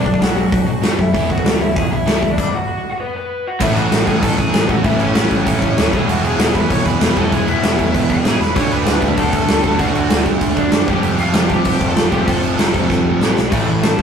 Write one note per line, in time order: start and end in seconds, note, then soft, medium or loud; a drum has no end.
0.00 0.20 B1 loud
0.05 0.20 B2 medium
0.05 0.20 F#3 medium
0.05 0.20 D4 medium
0.05 0.22 D5 medium
0.05 kick medium
0.14 kick medium
0.21 0.36 B1 loud
0.21 0.35 B2 medium
0.21 0.35 F#3 loud
0.21 0.35 F#3 medium
0.21 0.94 F#4 medium
0.21 1.01 F#5 medium
0.21 snare loud
0.21 open hi-hat medium
0.36 0.52 B1 medium
0.36 0.50 B2 medium
0.36 0.51 F#3 medium
0.51 0.67 D2 medium
0.51 0.65 B2 medium
0.51 0.66 B2 medium
0.51 0.65 F#3 medium
0.51 0.66 F#3 medium
0.51 kick loud
0.51 open hi-hat medium
0.66 0.81 B2 medium
0.66 0.80 B2 medium
0.66 0.82 B2 loud
0.66 0.81 F#3 medium
0.82 1.13 F#2 medium
0.82 0.97 B2 medium
0.82 0.97 F#3 medium
0.82 0.97 B3 loud
0.82 0.98 B3 medium
0.82 snare loud
0.82 open hi-hat medium
0.98 1.12 B2 medium
0.98 1.12 F#3 medium
0.98 1.13 F#3 medium
0.98 1.28 E4 medium
0.98 1.31 E5 loud
0.98 kick medium
1.13 1.44 E1 medium
1.13 1.29 E2 loud
1.13 1.29 B2 loud
1.13 1.28 E3 medium
1.13 1.29 E3 loud
1.13 1.29 B3 medium
1.13 1.29 E4 loud
1.13 kick loud
1.13 open hi-hat medium
1.30 1.43 E2 medium
1.30 1.44 B2 medium
1.30 1.44 E3 medium
1.30 1.44 B3 medium
1.30 1.59 F#4 medium
1.30 1.61 F#5 medium
1.30 kick medium
1.38 kick medium
1.44 1.75 D2 loud
1.44 1.59 E2 medium
1.44 1.59 B2 loud
1.44 1.59 E3 medium
1.44 1.60 B3 medium
1.44 snare loud
1.44 open hi-hat medium
1.61 1.75 E2 medium
1.61 1.75 B2 medium
1.61 1.74 E3 medium
1.61 1.75 B3 medium
1.61 1.75 E4 medium
1.61 1.77 E5 medium
1.75 1.91 E1 loud
1.75 1.90 E2 medium
1.75 1.90 B2 medium
1.75 1.90 E3 medium
1.75 1.90 B3 medium
1.75 1.90 G#4 medium
1.75 1.90 G#5 loud
1.75 kick loud
1.75 open hi-hat medium
1.91 2.06 B1 medium
1.91 2.06 E2 medium
1.91 2.06 B2 medium
1.91 2.05 E3 medium
1.91 2.05 B3 medium
1.91 2.27 E4 medium
1.91 2.32 E5 medium
2.06 2.37 C#2 medium
2.06 2.21 E2 medium
2.06 2.22 B2 medium
2.06 2.21 E3 loud
2.06 2.22 E3 medium
2.06 2.21 B3 medium
2.06 2.22 E4 medium
2.06 snare loud
2.06 open hi-hat medium
2.22 2.36 E2 medium
2.22 2.36 B2 medium
2.22 2.36 E3 medium
2.22 2.36 B3 medium
2.22 kick medium
2.31 2.52 D4 medium
2.31 2.54 D5 medium
2.38 kick medium
2.38 crash loud
2.54 2.90 F#4 medium
2.54 2.91 F#5 medium
2.91 2.99 F#4 medium
2.91 2.99 F#5 medium
3.00 3.14 B3 medium
3.00 3.15 B4 medium
3.16 3.44 B3 medium
3.16 3.48 B4 medium
3.47 3.61 F#4 medium
3.47 3.62 F#5 medium
3.60 3.71 A1 medium
3.60 4.21 A2 medium
3.60 4.68 A2 medium
3.60 4.23 E3 medium
3.60 4.71 E3 loud
3.60 4.69 A3 loud
3.60 4.23 A3 loud
3.60 4.68 C#4 medium
3.60 3.76 E4 medium
3.60 4.68 E4 loud
3.60 3.76 E5 medium
3.60 kick loud
3.60 crash loud
3.60 crash medium
3.76 3.87 A1 medium
3.76 4.05 F#4 medium
3.76 4.08 F#5 medium
3.76 crash medium
3.92 4.02 A1 loud
3.92 snare loud
3.92 crash loud
4.06 4.18 A1 medium
4.06 4.21 G#4 medium
4.06 4.24 G#5 medium
4.06 kick medium
4.06 crash medium
4.22 4.34 A1 medium
4.22 4.82 A2 medium
4.22 4.84 E3 medium
4.22 4.84 A3 medium
4.22 4.37 A4 medium
4.22 4.38 A5 loud
4.22 kick loud
4.22 crash loud
4.37 4.49 A1 medium
4.37 4.67 G#4 medium
4.37 4.70 G#5 medium
4.37 kick loud
4.37 crash medium
4.53 4.64 A1 medium
4.53 snare loud
4.53 crash medium
4.69 4.80 A1 loud
4.69 4.82 A2 medium
4.69 4.84 E3 medium
4.69 4.84 A3 medium
4.69 4.84 C#4 medium
4.69 4.87 E4 medium
4.69 4.84 F#4 medium
4.69 4.83 F#5 loud
4.69 kick medium
4.69 crash medium
4.83 4.95 A1 loud
4.83 5.44 A2 medium
4.83 5.91 A2 medium
4.83 5.46 E3 loud
4.83 5.93 E3 loud
4.83 5.46 A3 loud
4.83 5.92 A3 loud
4.83 5.93 C#4 loud
4.83 4.98 E4 medium
4.83 5.00 E5 medium
4.83 kick loud
4.83 crash medium
4.87 5.96 E4 loud
4.99 5.11 A1 loud
4.99 5.58 C#4 medium
4.99 5.59 C#5 medium
4.99 crash medium
5.14 5.25 A1 loud
5.14 snare loud
5.14 crash medium
5.31 5.41 A1 medium
5.31 kick medium
5.31 crash medium
5.45 5.57 A1 loud
5.45 5.91 A2 medium
5.45 5.94 E3 medium
5.45 5.93 A3 medium
5.45 kick loud
5.45 crash loud
5.60 5.73 A1 medium
5.60 5.90 C#4 medium
5.60 5.93 C#5 medium
5.60 kick medium
5.60 crash medium
5.77 5.87 D2 loud
5.77 snare loud
5.77 crash medium
5.91 6.04 E1 loud
5.91 6.56 E2 medium
5.91 6.54 B2 loud
5.91 6.99 E3 loud
5.91 6.53 E3 loud
5.91 7.01 G#3 loud
5.91 7.01 B3 loud
5.91 6.07 G#4 medium
5.91 6.08 G#5 loud
5.91 kick loud
5.91 crash medium
5.96 7.02 E4 loud
6.07 6.18 E1 loud
6.07 6.23 F#4 medium
6.07 6.23 F#5 medium
6.07 crash medium
6.23 6.34 E1 medium
6.23 6.53 G#4 medium
6.23 6.55 G#5 loud
6.23 crash medium
6.38 6.49 E1 loud
6.38 snare loud
6.38 crash loud
6.54 6.65 E1 loud
6.54 7.14 E2 medium
6.54 7.15 B2 medium
6.54 7.15 E3 medium
6.54 6.70 B4 medium
6.54 6.70 B5 loud
6.54 kick medium
6.54 crash medium
6.70 6.81 E1 loud
6.70 6.85 C#5 medium
6.70 6.85 C#6 loud
6.70 kick loud
6.70 crash loud
6.85 6.96 E1 medium
6.85 7.15 B4 medium
6.85 7.17 B5 loud
6.85 kick medium
6.85 crash medium
7.01 7.11 E1 loud
7.01 7.15 E3 medium
7.01 7.16 G#3 medium
7.01 7.16 B3 medium
7.01 7.17 E4 medium
7.01 snare loud
7.01 crash loud
7.15 7.27 E1 medium
7.15 7.76 E2 loud
7.15 7.77 B2 loud
7.15 8.23 E3 loud
7.15 7.76 E3 loud
7.15 8.24 G#3 medium
7.15 8.25 B3 loud
7.15 7.31 A4 medium
7.15 7.32 A5 loud
7.15 kick medium
7.15 crash medium
7.19 8.25 E4 loud
7.32 7.43 E1 loud
7.32 7.47 G#4 medium
7.32 7.48 G#5 loud
7.32 kick medium
7.32 crash medium
7.47 7.58 E1 medium
7.47 8.06 E4 medium
7.47 8.11 E5 loud
7.47 crash medium
7.63 7.73 E1 medium
7.63 snare loud
7.63 crash medium
7.77 7.89 E1 loud
7.77 8.40 E2 medium
7.77 8.39 B2 medium
7.77 8.38 E3 medium
7.77 kick medium
7.77 crash medium
7.94 8.05 E1 loud
7.94 kick loud
7.94 crash medium
8.09 8.20 E1 medium
8.09 8.38 G#4 medium
8.09 8.41 G#5 medium
8.09 kick medium
8.09 crash medium
8.24 8.35 A1 loud
8.24 8.39 E3 medium
8.24 8.39 G#3 medium
8.24 8.40 B3 medium
8.24 8.41 E4 medium
8.24 snare loud
8.24 crash medium
8.40 8.58 E1 medium
8.40 8.55 B4 medium
8.40 8.55 B5 loud
8.40 snare medium
8.55 8.66 D2 loud
8.55 9.63 D3 medium
8.55 9.14 D3 loud
8.55 9.17 A3 loud
8.55 9.65 A3 medium
8.55 9.18 D4 loud
8.55 9.63 D4 loud
8.55 9.61 F#4 loud
8.55 8.70 C#5 medium
8.55 8.72 C#6 medium
8.55 kick loud
8.55 crash medium
8.70 8.81 D2 medium
8.70 9.15 B4 medium
8.70 9.17 B5 medium
8.70 crash medium
8.86 8.96 D2 loud
8.86 snare loud
8.86 crash loud
9.02 9.13 D2 medium
9.02 kick medium
9.02 crash medium
9.16 9.28 D2 loud
9.16 9.77 D3 medium
9.16 9.79 A3 medium
9.16 9.79 D4 loud
9.16 9.76 A4 medium
9.16 9.81 A5 loud
9.16 kick loud
9.16 crash loud
9.33 9.44 D2 loud
9.33 kick medium
9.33 crash medium
9.48 9.58 D2 loud
9.48 snare loud
9.48 crash medium
9.63 9.74 D2 loud
9.63 9.78 D3 medium
9.63 9.79 A3 medium
9.63 9.78 D4 medium
9.63 9.78 F#4 loud
9.63 kick medium
9.63 crash medium
9.78 9.90 D2 loud
9.78 10.39 D3 loud
9.78 10.87 D3 loud
9.78 10.41 A3 loud
9.78 10.88 A3 loud
9.78 10.88 D4 loud
9.78 10.41 D4 loud
9.78 9.95 F#4 medium
9.78 10.88 F#4 loud
9.78 9.94 F#5 medium
9.78 kick loud
9.78 crash medium
9.95 10.05 D2 loud
9.95 10.25 F#4 medium
9.95 10.24 F#5 medium
9.95 crash medium
10.10 10.21 D2 loud
10.10 snare loud
10.10 crash loud
10.26 10.36 D2 medium
10.26 kick medium
10.26 crash medium
10.40 10.52 D2 medium
10.40 10.86 D3 medium
10.40 10.89 A3 medium
10.40 10.87 D4 medium
10.40 kick loud
10.40 crash medium
10.57 10.67 D2 loud
10.57 10.87 D4 medium
10.57 10.89 D5 medium
10.57 kick medium
10.57 crash medium
10.72 10.83 F#2 medium
10.72 snare loud
10.72 crash medium
10.87 10.98 F1 medium
10.87 11.51 F2 loud
10.87 11.49 C3 loud
10.87 11.94 F3 loud
10.87 11.49 F3 loud
10.87 11.96 A3 medium
10.87 11.96 C4 loud
10.87 11.97 F4 medium
10.87 11.18 G4 medium
10.87 11.21 G5 medium
10.87 kick loud
10.87 crash medium
11.03 11.14 F1 medium
11.03 crash medium
11.19 11.30 F1 medium
11.19 11.48 F4 medium
11.19 11.51 F5 medium
11.19 crash medium
11.34 11.46 F1 loud
11.34 snare loud
11.34 crash medium
11.49 11.60 F1 medium
11.49 12.10 F2 medium
11.49 12.11 C3 medium
11.49 12.11 F3 loud
11.49 11.87 G4 medium
11.49 11.89 G5 loud
11.49 kick medium
11.49 crash medium
11.65 11.76 F1 loud
11.65 kick loud
11.65 crash loud
11.81 11.92 F1 medium
11.81 kick loud
11.81 crash medium
11.89 12.10 A4 medium
11.89 12.12 A5 medium
11.95 12.07 F1 loud
11.95 12.10 F3 medium
11.95 12.12 A3 medium
11.95 12.11 C4 medium
11.95 12.12 F4 loud
11.95 snare loud
11.95 crash medium
12.11 12.23 F1 medium
12.11 12.73 F2 medium
12.11 12.74 C3 loud
12.11 13.19 F3 loud
12.11 12.72 F3 loud
12.11 13.20 A3 medium
12.11 13.21 C4 medium
12.11 13.21 F4 medium
12.11 12.26 G4 medium
12.11 12.29 G5 medium
12.11 kick medium
12.11 crash medium
12.28 12.38 F1 loud
12.28 13.17 A4 medium
12.28 13.21 A5 medium
12.28 kick loud
12.28 crash loud
12.43 12.54 F1 medium
12.43 crash medium
12.59 12.70 F1 loud
12.59 snare loud
12.59 crash loud
12.73 12.85 F1 medium
12.73 13.36 F2 medium
12.73 13.36 C3 medium
12.73 13.35 F3 medium
12.73 kick medium
12.73 crash medium
12.90 13.00 F1 loud
12.90 kick loud
12.90 snare medium
13.05 13.16 F1 loud
13.20 13.32 A1 loud
13.20 13.35 F3 medium
13.20 13.36 A3 medium
13.20 13.36 C4 medium
13.20 13.37 F4 medium
13.20 snare loud
13.37 13.47 B1 medium
13.37 snare medium
13.51 13.62 A1 medium
13.51 13.66 A2 medium
13.51 13.66 E3 loud
13.51 13.67 E3 medium
13.51 13.66 A3 loud
13.51 13.67 A3 loud
13.51 kick loud
13.51 crash loud
13.51 crash medium
13.67 13.77 A1 medium
13.67 13.81 A2 medium
13.67 13.81 E3 medium
13.67 13.82 E3 medium
13.82 13.93 A1 loud
13.82 13.97 A2 medium
13.82 13.97 E3 loud
13.82 13.97 E3 medium
13.82 14.02 A5 medium
13.82 snare loud
13.82 crash medium
13.98 14.02 A1 medium
13.98 14.02 A2 medium
13.98 14.02 E3 medium
13.98 kick medium